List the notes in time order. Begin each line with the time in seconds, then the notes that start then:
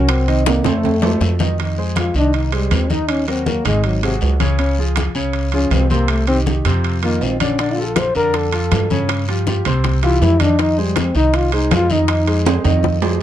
Already playing: C2 F#3 C#4 F#4 A#4
0.08 C4, high bongo, high conga, high timbale, long guiro
0.27 D#3 D#4 D#5, high bongo, high conga, high timbale
0.46 A#3, high bongo, high conga, high timbale, short guiro
0.64 F2 A3 A4 C5, high bongo, high conga, low conga, high timbale, short guiro
0.83 high conga, low conga, high timbale, long guiro
1.02 A3 A4 C5, low bongo, low timbale
1.20 F2, low bongo, low timbale, short guiro
1.39 D#3 D#4 D#5, low bongo, high conga, low timbale, short guiro
1.58 D#3 D#4 D#5, high conga, high timbale, long guiro
1.78 G#3 G#4 C5, high conga
1.96 F4, high conga, high timbale, low timbale, short guiro
2.14 C2 D#3 D4 D#4 D#5, high conga, short guiro
2.33 D#4, high conga, high timbale, long guiro
2.52 G3 G#3 G#4 C5, high conga, high timbale
2.71 D#2 C4, high conga, high timbale, low timbale, short guiro
2.90 D#3 D#4 D#5, high conga, short guiro
3.09 C#4, high conga, high timbale, long guiro
3.27 F#3 C4 F#4 A#4, high conga, high timbale
3.46 F#3 A#3 F#4 A#4, high conga, low timbale, short guiro
3.65 G#1 D#3 G#3 D#4 D#5, high conga, low conga, high timbale, short guiro
3.84 F#3, high conga, high timbale, long guiro
4.03 C3 F#3 F#4 G#4, high conga, high timbale
4.21 C#2, high conga, low timbale, short guiro
4.40 C#3 C#4 C#5, high conga, high timbale, short guiro
4.59 C#3 C#4 C#5, high conga, high timbale, long guiro
4.78 F3 F4 G#4, high conga
4.96 high conga, high timbale, low timbale, short guiro
5.15 C#2 C#3 C#4 C#5, high conga, short guiro
5.33 high conga, high timbale, long guiro
5.52 F3 C#4 F4 G#4, high conga, high timbale
5.70 C2 C4, high conga, high timbale, low timbale, short guiro
5.90 C3 A#3 C4 C5, high conga, short guiro
6.08 A3, high conga, high timbale, long guiro
6.27 D#3 C4 D#4 G4, high conga, high timbale
6.46 D#3 D#4 G4, high conga, low timbale, short guiro
6.65 F2 C3 C4 C5, high conga, low conga, high timbale, short guiro
6.84 high conga, high timbale, long guiro
7.03 D#3 A#3 D#4 F4, high conga, high timbale
7.21 A#1 C4, high conga, low timbale, short guiro
7.40 D3 C#4 D4 D5, high conga, high timbale, short guiro
7.59 D3 D4 D5, high bongo, high conga, high timbale, long guiro
7.74 F3 F4, high bongo
7.78 A4, high conga
7.85 A4
7.96 C5, high bongo, high conga, high timbale, low timbale, short guiro
8.15 F2 D3 D4 A#4 D5, high conga, short guiro
8.34 A4, high bongo, high conga, high timbale, long guiro
8.53 F3 F4 A4, high bongo, high conga, high timbale
8.71 G2, high bongo, low bongo, high conga, high timbale, low timbale, short guiro
8.90 C#3 C#4 C#5, high bongo, high conga, short guiro
9.09 high bongo, high conga, high timbale, long guiro
9.28 F3 F4 G4, high bongo, high conga, high timbale
9.47 F3 F4 G4, high bongo, high conga, low timbale, short guiro
9.65 C2 C3 C4 C5, high conga, low conga, high timbale, short guiro
9.84 high bongo, high conga, low conga, high timbale, long guiro
10.03 E3 E4 F4 G4, high bongo, high conga, high timbale
10.21 F2 E4, high bongo, low bongo, low timbale, short guiro
10.40 D#3 D4 D#4 D#5, high bongo, high conga, high timbale, short guiro
10.59 D#3 D#4 D#5, high bongo, high timbale, long guiro
10.78 G3 G#3 G#4 C5, high bongo, high conga
10.96 C4, high bongo, high conga, high timbale, low timbale, short guiro
11.15 C2 D#3 D#4 D#5, high conga, short guiro
11.33 F4, high bongo, high conga, high timbale, long guiro
11.52 G#3 D#4 G#4 C5, high bongo, high conga, high timbale
11.71 F2 F4, high bongo, low bongo, high conga, high timbale, low timbale, short guiro
11.90 D#3 D#4 D#5, high bongo, high conga, short guiro
12.08 high bongo, high conga, high timbale, long guiro
12.27 G#3 G#4 C5, high bongo, high conga, high timbale
12.45 G#3 G#4 C5, high bongo, high conga, high timbale, short guiro
12.64 F2 D#3 D#4 D#5, high conga, low conga, high timbale, short guiro
12.83 high bongo, high conga, low conga, long guiro
13.02 G#3 G#4 C5, low timbale